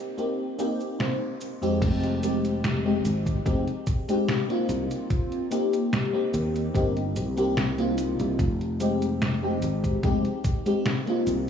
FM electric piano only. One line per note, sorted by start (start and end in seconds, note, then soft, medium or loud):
0.00 0.12 A#3 medium
0.00 0.13 C4 medium
0.00 0.13 D#4 medium
0.00 0.13 G4 medium
0.18 0.43 A#3 medium
0.18 0.43 C4 medium
0.18 0.43 D#4 medium
0.18 0.43 G4 medium
0.59 0.84 A#3 medium
0.59 0.84 C4 medium
0.59 0.84 D#4 medium
0.59 0.84 G4 loud
0.99 1.24 A#3 medium
0.99 1.25 C4 medium
0.99 1.25 D#4 medium
0.99 1.25 C5 medium
1.61 2.18 F2 medium
1.61 2.18 G#3 medium
1.61 2.18 C4 medium
1.61 2.18 D#4 medium
1.61 2.19 G4 loud
2.23 2.80 G#3 medium
2.23 2.81 C4 medium
2.23 2.81 D#4 medium
2.23 2.81 G4 medium
2.85 3.41 G#3 medium
2.85 3.41 C4 medium
2.85 3.42 D#4 medium
2.85 3.42 G4 medium
3.45 3.71 G#3 medium
3.45 3.71 C4 medium
3.45 3.71 D#4 medium
3.45 3.72 G4 medium
4.08 4.45 G#3 medium
4.08 4.45 C4 medium
4.08 4.45 D#4 medium
4.08 4.45 G4 medium
4.49 5.46 A#3 medium
4.49 5.47 C4 medium
4.49 5.47 D#4 medium
4.49 5.48 F4 medium
5.51 6.09 A#3 medium
5.51 6.09 C4 medium
5.51 6.09 D#4 medium
5.51 6.09 G4 medium
6.13 6.70 A#3 medium
6.13 6.70 C4 medium
6.13 6.70 D#4 medium
6.13 6.71 G4 medium
6.74 7.00 A#3 medium
6.74 7.00 C4 medium
6.74 7.00 D#4 medium
6.74 7.00 G4 medium
7.37 7.73 A#3 medium
7.37 7.73 C4 medium
7.37 7.74 D#4 medium
7.37 7.74 G4 medium
7.78 8.37 A#3 medium
7.78 8.37 C4 medium
7.78 8.37 D#4 medium
7.78 8.37 F4 medium
8.80 9.38 G#3 medium
8.80 9.38 C4 medium
8.80 9.38 D#4 medium
8.80 9.38 G4 medium
9.43 9.99 G#3 medium
9.43 9.99 C4 medium
9.43 9.99 D#4 medium
9.43 10.00 G4 medium
10.03 10.28 G#3 medium
10.03 10.29 C4 medium
10.03 10.29 D#4 medium
10.03 10.29 G4 medium
10.66 11.02 G#3 medium
10.66 11.02 C4 medium
10.66 11.02 D#4 medium
10.66 11.03 G4 medium
11.06 11.50 A#3 medium
11.06 11.50 C4 medium
11.06 11.50 D#4 medium
11.06 11.50 F4 medium